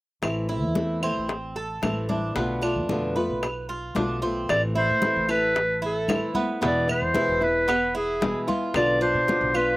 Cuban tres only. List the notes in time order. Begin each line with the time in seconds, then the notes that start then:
0.49 E4
1.03 C4
1.56 A4
2.09 D4
2.36 B3
2.62 D4
3.16 B4
3.69 F4
3.96 D4
4.22 C4
4.75 E4
5.29 A4
5.82 E4
6.35 B3
6.62 B3
7.15 E4
7.68 B3
7.95 E4
8.48 F4
9.01 D4
9.54 F4